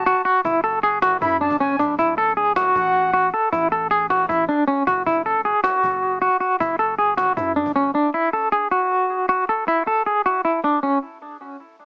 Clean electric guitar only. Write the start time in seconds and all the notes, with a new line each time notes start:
0.06 F#4
0.25 F#4
0.45 E4
0.64 A4
0.83 G#4
1.02 F#4
1.22 E4
1.41 D4
1.60 C#4
1.79 D4
1.99 E4
2.18 A4
2.37 G#4
2.56 F#4
3.13 F#4
3.34 A4
3.52 E4
3.72 A4
3.91 G#4
4.10 F#4
4.29 E4
4.49 D4
4.67 C#4
4.87 F#4
5.06 E4
5.26 A4
5.45 G#4
5.64 F#4
6.22 F#4
6.41 F#4
6.61 E4
6.79 A4
6.99 G#4
7.17 F#4
7.37 E4
7.56 D4
7.76 C#4
7.95 D4
8.14 E4
8.34 A4
8.52 G#4
8.71 F#4
9.29 F#4
9.49 A4
9.68 E4
9.87 A4
10.06 G#4
10.26 F#4
10.45 E4
10.64 D4
10.83 C#4